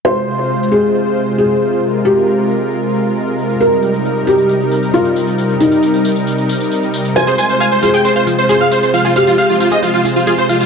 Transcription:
<<
  \new Staff \with { instrumentName = "Supersaw synth" } { \time 4/4 \key f \minor \tempo 4 = 135 r1 | r1 | r1 | r1 |
aes''16 c''16 aes''16 c''16 aes''16 c''16 c''16 g''16 c''16 c''16 r16 c''16 c''16 f''16 c''16 c''16 | f''16 f'16 f''16 f'16 f''16 f'16 f'16 ees''16 f'16 f'16 r16 f'16 f'16 c''16 f'16 f'16 | }
  \new Staff \with { instrumentName = "Synth arpeggio sound" } { \time 4/4 \key f \minor r1 | r1 | r1 | r1 |
f'16 aes'16 c''16 r16 f''16 r16 f'16 aes'16 c''16 f''16 f'16 r16 aes'16 c''16 f''16 r16 | f'16 aes'16 c''16 r16 f''16 r16 f'16 aes'16 c''16 f''16 f'16 r16 aes'16 c''16 f''16 r16 | }
  \new Staff \with { instrumentName = "Felt piano" } { \time 4/4 \key f \minor c''4. aes'4. aes'4~ | aes'8 g'2.~ g'8 | bes'4. g'4. f'4~ | f'8 ees'2.~ ees'8 |
c''4. aes'4. aes'4~ | aes'8 g'2.~ g'8 | }
  \new Staff \with { instrumentName = "Analog synth pad" } { \time 4/4 \key f \minor <c aes f' c''>8 <c aes f' c''>16 <c aes f' c''>8 <c aes f' c''>8 <c aes f' c''>8 <c aes f' c''>8 <c aes f' c''>16 <c aes f' c''>8 <c aes f' c''>8 | <c aes f' bes'>8 <c aes f' bes'>16 <c aes f' bes'>8 <c aes f' bes'>8 <c aes f' bes'>8 <c aes f' bes'>8 <c aes f' bes'>16 <c aes f' bes'>8 <c aes f' bes'>8 | <c g ees' bes'>8 <c g ees' bes'>16 <c g ees' bes'>8 <c g ees' bes'>8 <c g ees' bes'>8 <c g ees' bes'>8 <c g ees' bes'>16 <c g ees' bes'>8 <c g ees' bes'>8 | <c g ees' bes'>8 <c g ees' bes'>16 <c g ees' bes'>8 <c g ees' bes'>8 <c g ees' bes'>8 <c g ees' bes'>8 <c g ees' bes'>16 <c g ees' bes'>8 <c g ees' bes'>8 |
<c aes f' c''>8 <c aes f' c''>16 <c aes f' c''>8 <c aes f' c''>8 <c aes f' c''>8 <c aes f' c''>8 <c aes f' c''>16 <c aes f' c''>8 <c aes f' c''>8 | <c aes f' c''>8 <c aes f' c''>16 <c aes f' c''>8 <c aes f' c''>8 <c aes f' c''>8 <c aes f' c''>8 <c aes f' c''>16 <c aes f' c''>8 <c aes f' c''>8 | }
  \new DrumStaff \with { instrumentName = "Drums" } \drummode { \time 4/4 r8 tamb8 r4 tamb8 tamb8 r8 tamb16 tamb16 | tamb16 tamb16 tamb16 tamb16 tamb16 tamb16 tamb16 tamb16 tamb16 tamb16 tamb16 tamb16 tamb16 tamb16 tamb16 tamb16 | tamb16 tamb16 tamb16 tamb16 tamb16 tamb16 tamb16 tamb16 tamb16 tamb16 tamb16 tamb16 tamb16 tamb16 tamb16 tamb16 | tamb16 tamb16 tamb16 tamb16 tamb16 tamb16 tamb16 tamb16 tamb16 tamb16 tamb16 tamb16 tamb16 tamb16 tamb16 tamb16 |
tamb16 tamb16 tamb16 tamb16 tamb16 tamb16 tamb16 tamb16 tamb16 tamb16 tamb16 tamb16 tamb16 tamb16 tamb16 tamb16 | tamb16 tamb16 tamb16 tamb16 tamb16 tamb16 tamb16 tamb16 tamb16 tamb16 tamb16 tamb16 tamb16 tamb16 tamb16 tamb16 | }
>>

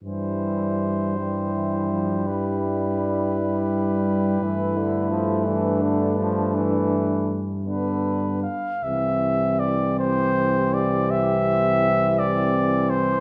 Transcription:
<<
  \new Staff \with { instrumentName = "Cornet" } { \time 12/8 \key c \major \tempo 4. = 55 c''2. b'2.~ | b'1 r8 b'4 f''8 | e''4 d''8 c''4 d''8 e''4. d''4 c''8 | }
  \new Staff \with { instrumentName = "Flugelhorn" } { \time 12/8 \key c \major e'4. e'4. e'2. | e'4. d'2~ d'8 r8 d'4 r8 | g'1. | }
  \new Staff \with { instrumentName = "Trombone section" } { \clef bass \time 12/8 \key c \major g4. e8 e8 f8 g2. | a1~ a8 b4 r8 | c'1. | }
  \new Staff \with { instrumentName = "Trombone" } { \clef bass \time 12/8 \key c \major e4. g2. g4. | e8 d8 f8 e8 d8 f8 e4 r8 d4 r8 | e1. | }
  \new Staff \with { instrumentName = "Tuba" } { \clef bass \time 12/8 \key c \major g,1. | g,1~ g,4. r8 | c,1. | }
>>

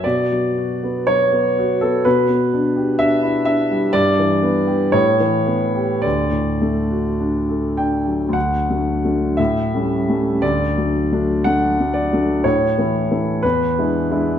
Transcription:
<<
  \new Staff \with { instrumentName = "Grand piano" } { \time 2/4 \key e \dorian \tempo 4 = 59 d''4 cis''8. a'16 | b'4 e''8 e''8 | \key d \major d''4 cis''4 | d''4. g''8 |
fis''4 e''4 | d''4 fis''8 d''8 | cis''4 b'4 | }
  \new Staff \with { instrumentName = "Grand piano" } { \time 2/4 \key e \dorian b,16 fis16 fis'16 b16 fis16 b16 fis'16 b16 | b,16 b16 d'16 g'16 d'16 e'16 d'16 g16 | \key d \major g,16 e16 b16 g'16 a,16 e16 b16 g'16 | d,16 a,16 a16 fis'16 d'16 a'16 d'16 fis16 |
\tuplet 3/2 { d,8 <fis a d'>8 <fis a d'>8 a,8 <g a cis'>8 <g a cis'>8 } | \tuplet 3/2 { d,8 <fis a d'>8 <fis a d'>8 <fis a d'>8 <fis a d'>8 <fis a d'>8 } | \tuplet 3/2 { a,8 <e a e'>8 <e a e'>8 e,8 <gis d' e'>8 <gis d' e'>8 } | }
>>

